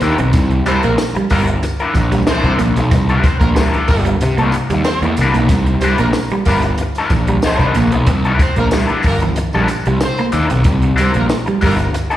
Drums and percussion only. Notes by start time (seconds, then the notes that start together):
0.01 closed hi-hat, tambourine
0.18 closed hi-hat
0.33 kick, closed hi-hat, tambourine
0.51 closed hi-hat
0.66 snare, closed hi-hat, tambourine
0.83 closed hi-hat
0.98 snare, tambourine
1.15 closed hi-hat
1.30 kick, open hi-hat, tambourine
1.47 closed hi-hat
1.63 closed hi-hat, tambourine
1.79 closed hi-hat
1.94 kick, closed hi-hat, tambourine
2.12 closed hi-hat, tambourine
2.27 snare, tambourine
2.44 kick, closed hi-hat
2.59 closed hi-hat, tambourine
2.76 closed hi-hat, tambourine
2.91 kick, closed hi-hat, tambourine
3.09 closed hi-hat
3.24 kick, snare, closed hi-hat, tambourine
3.41 kick, closed hi-hat
3.56 snare, tambourine
3.74 closed hi-hat
3.88 kick, open hi-hat, tambourine
4.05 closed hi-hat
4.20 closed hi-hat, tambourine
4.38 closed hi-hat
4.52 closed hi-hat, tambourine
4.70 closed hi-hat, tambourine
4.84 snare, tambourine
5.02 closed hi-hat
5.17 closed hi-hat, tambourine
5.34 closed hi-hat, tambourine
5.49 kick, closed hi-hat, tambourine
5.66 closed hi-hat
5.81 snare, closed hi-hat, tambourine
5.98 closed hi-hat
6.13 snare, tambourine
6.30 closed hi-hat
6.45 kick, open hi-hat, tambourine
6.62 closed hi-hat, tambourine
6.78 closed hi-hat, tambourine
6.95 closed hi-hat, tambourine
7.10 kick, closed hi-hat, tambourine
7.27 closed hi-hat
7.42 snare, tambourine
7.59 kick, closed hi-hat
7.74 closed hi-hat, tambourine
7.92 closed hi-hat
8.07 kick, closed hi-hat, tambourine
8.25 closed hi-hat
8.39 kick, snare, closed hi-hat, tambourine
8.56 closed hi-hat
8.71 snare, tambourine
8.89 closed hi-hat
9.03 kick, open hi-hat, tambourine
9.20 closed hi-hat, tambourine
9.36 closed hi-hat, tambourine
9.53 tambourine
9.68 closed hi-hat, tambourine
9.86 closed hi-hat
10.01 snare, tambourine
10.18 closed hi-hat
10.32 closed hi-hat, tambourine
10.50 closed hi-hat, tambourine
10.64 kick, closed hi-hat, tambourine
10.82 closed hi-hat
10.97 snare, closed hi-hat, tambourine
11.14 closed hi-hat
11.29 snare, tambourine
11.47 closed hi-hat
11.61 kick, open hi-hat, tambourine
11.79 closed hi-hat, tambourine
11.94 closed hi-hat, tambourine
12.11 closed hi-hat